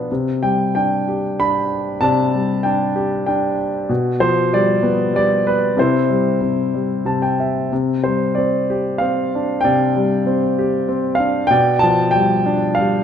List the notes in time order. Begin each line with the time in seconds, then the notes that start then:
Already playing: B2 F3 B3 D4 F5 B5
0.12 C3
0.43 G3 G5
0.75 D4 G5
1.08 G4
1.40 D4 B5
2.01 C3 D5 A5
2.35 G3
2.63 D4 G5
2.96 G4
3.26 D4 G5
3.89 B2
4.20 F3 C5
4.53 G3 D5
4.83 B3
5.13 G3 D5
5.47 B4
5.77 C3 E4 C5
6.10 G3
6.41 C3
6.74 G3
7.05 C3 A5
7.22 G5
7.40 E5
7.73 C3
8.04 G3 C5
8.35 C4 D5
8.70 G4
8.98 C4 F5
9.35 D4
9.61 D5 G5
9.65 C3
9.96 G3
10.26 C4
10.59 G4
10.88 C4
11.15 F5
11.19 D4
11.47 B2 D5 G5
11.79 F3 A5
12.11 G5
12.15 G3
12.46 D4
12.75 F5
12.79 G3